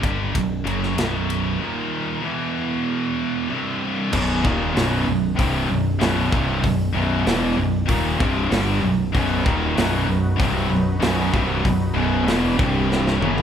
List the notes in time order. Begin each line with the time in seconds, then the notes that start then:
0.03 G1 G2 D3 G3, kick, ride
0.35 B0 B1 F#2, kick, ride
0.66 F#1 F#2 C#3 F#3, ride
0.83 snare
0.98 B0 B1 F#2 B2, snare, ride
1.30 ride
1.61 D#2 A#2 D#3
2.22 E2 B2 E3
3.49 C2 G2 C3
4.12 B0 B1 F#2 B2, kick, crash
4.42 D#1 D#2 A#2 D#3, kick
4.74 B0 B1 F#2 B2, snare, open hi-hat
5.06 B0 B1 F#2
5.38 C1 C2 G2 C3, kick, open hi-hat
5.67 B0 B1 F#2
5.71 B1
6.00 B0 B1 F#2 B2, snare, open hi-hat
6.32 C1 C2 G2 C3, kick
6.63 B0 B1 F#2, kick, open hi-hat
6.94 B0 B1 F#2 B2
7.26 E1 E2 B2 E3, snare, open hi-hat
7.57 B0 B1 F#2
7.88 D#1 D#2 A#2 D#3, kick, open hi-hat
8.20 C1 C2 G2 C3, kick
8.51 G1 G2 D3 G3, snare, open hi-hat
8.82 B0 B1 F#2
9.15 B0 B1 F#2 B2 F#3 D#4 F#4 B4, kick, open hi-hat
9.45 D#1 D#2 A#2 D#3, kick
9.76 B0 B1 F#2 B2, snare, open hi-hat
10.07 B0 B1 F#2
10.38 C1 C2 G2 C3, kick, open hi-hat
10.70 B0 B1 F#2
11.01 B0 B1 F#2 B2, snare, open hi-hat
11.32 C1 C2 G2 C3, kick
11.63 B0 B1 F#2, kick, open hi-hat
11.94 B0 B1 F#2 B2
12.26 E1 E2 B2 E3, snare, open hi-hat
12.58 C1 C2 G2 C3 G3 C4 G4, kick
12.92 snare
13.07 snare
13.20 F#1 F#2 C#3 F#3 B3 F#4 B4, high tom
13.38 high tom